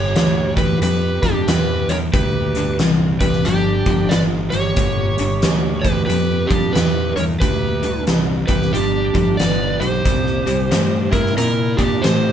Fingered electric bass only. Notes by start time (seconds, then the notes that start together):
Already playing: G1
0.15 D2
0.81 F2
1.23 F2
1.47 E2
1.89 E2
2.14 D2
2.79 C2
3.21 C2
3.46 G1
3.86 G1
4.13 G1
4.54 G1
4.77 G1
5.19 G1
5.44 D2
6.10 F2
6.51 F2
6.76 E2
7.17 E2
7.42 D2
8.09 C2
8.49 C2
8.74 G1
9.15 G1
9.40 G1
9.81 B1
10.06 C2
10.47 C2
10.72 G2
11.38 A#2
11.79 A#2
12.04 A2